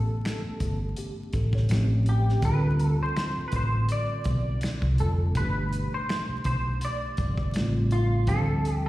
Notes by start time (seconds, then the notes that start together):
Already playing: E3 A3 B3 C#4 G4 A4
0.08 muted fingered electric bass stroke
0.25 finger snap, snare, closed hi-hat
0.44 muted fingered electric bass stroke
0.60 G1, kick, closed hi-hat
0.97 G4, closed hi-hat
1.33 A1 A4, kick, closed hi-hat
1.53 C#5, kick, snare
1.69 A1 F3 A3 C4 C#4 G4, finger snap, snare, closed hi-hat
2.06 G4, closed hi-hat
2.29 snare
2.41 D2 D3 G3 C4, kick, closed hi-hat
2.45 F4 G#4 B4
2.55 A4
2.80 closed hi-hat
3.01 C5, muted fingered electric bass stroke
3.16 finger snap, snare, closed hi-hat
3.38 muted fingered electric bass stroke
3.48 B4, closed hi-hat
3.53 A1 C5, kick
3.89 D5, closed hi-hat
4.24 B1, kick, closed hi-hat
4.61 finger snap, snare, closed hi-hat
4.82 C2, kick
4.98 F1 D3 G3 C4 F4 A4, closed hi-hat
5.33 G1 B2 E3 A3, kick, closed hi-hat
5.37 D4 G4 B4
5.73 closed hi-hat
5.93 C5, muted fingered electric bass stroke
6.09 finger snap, snare, closed hi-hat
6.29 muted fingered electric bass stroke
6.44 B1 C5, kick, closed hi-hat
6.81 D5, closed hi-hat
7.17 G1, kick, closed hi-hat
7.37 kick
7.54 A1 C#3 G3 A3 C4, finger snap, snare, closed hi-hat
7.58 F4
7.91 F4, closed hi-hat
8.25 D2 D3 G3 C4 A4, kick, closed hi-hat
8.31 F3 A4
8.65 closed hi-hat
8.74 G4